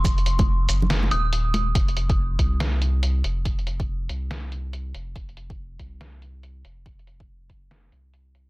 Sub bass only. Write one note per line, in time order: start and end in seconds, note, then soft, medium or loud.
0.00 0.67 F1 medium
0.69 1.10 F#1 medium
1.11 1.74 D#1 medium
1.75 2.38 F1 loud
2.39 3.23 C2 medium
3.24 4.08 F1 medium
4.09 4.93 C2 medium
4.94 5.14 F1 medium
5.16 5.78 F1 medium
5.79 6.63 C2 medium
6.64 7.48 F1 medium
7.50 7.91 F#1 medium
7.92 8.50 C2 medium